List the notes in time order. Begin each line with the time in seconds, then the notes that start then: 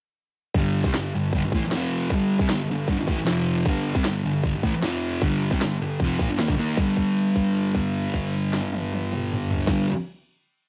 0.54 G2 D3 G3, kick, crash
0.84 C3 G3, kick
0.94 G2 D3, snare, crash
1.15 G2 D3
1.33 G2 D3, kick, crash
1.45 G2 D3
1.52 A2 E3, kick
1.65 muted distorted electric guitar stroke
1.71 F2 C3, snare, crash
1.76 F3
2.10 G2 D3, kick, crash
2.15 G3
2.39 C3 G3, kick
2.49 G2 D3, snare, crash
2.71 G2 D3
2.88 G2 D3, kick, crash
2.99 G2 D3
3.08 A2 E3, kick
3.18 muted distorted electric guitar stroke
3.25 F2 C3 F3, snare, crash
3.65 G2 D3 G3, kick, crash
3.95 C3 G3, kick
4.04 G2 D3, snare, crash
4.26 G2 D3
4.43 G2 D3, kick, crash
4.55 G2 D3
4.63 A2 E3, kick
4.74 muted distorted electric guitar stroke
4.82 F2 C3 F3, snare, crash
5.21 G2 D3 G3, kick, crash
5.51 C3 G3, kick
5.61 G2 D3, snare, crash
5.82 G2 D3
6.00 F2 C3, kick, crash
6.04 F3
6.19 A#2 F3, kick
6.29 G2 D3
6.39 D#3 A#3, snare, crash
6.48 G2 D3, kick
6.58 D#3 A#3 D#4
6.77 G2 D3, kick, crash
6.81 G3
6.97 kick, crash
7.17 crash
7.36 kick, crash
7.56 crash
7.75 kick, crash
7.95 crash
8.14 kick, crash
8.34 crash
8.53 snare
8.73 high tom
8.93 high tom
9.13 mid tom
9.32 mid tom
9.51 floor tom
9.67 G2 D3, kick, snare, crash
9.71 G3